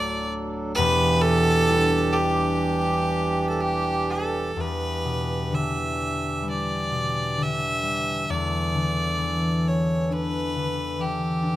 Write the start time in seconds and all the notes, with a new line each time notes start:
Already playing: D1 D2 F#3 A3 D4 F#4 A4 D5
0.74 E1 E2 E3 D4 G4 B4
1.22 A4
1.68 G3 D4 E4
2.13 G4
3.49 A4
3.61 G4
4.10 A4
4.54 E2 E3 D4 G4
4.60 B4
5.04 B2
5.51 D3
5.55 E5
6.43 G3
6.49 D5
6.91 B2
7.37 D3
7.42 E5
7.83 G3
8.30 E2 E3 A4 D5
8.74 D3
9.18 E3
9.68 C#5
10.10 D4 B4
10.55 D3
10.98 E3 G4
11.42 D4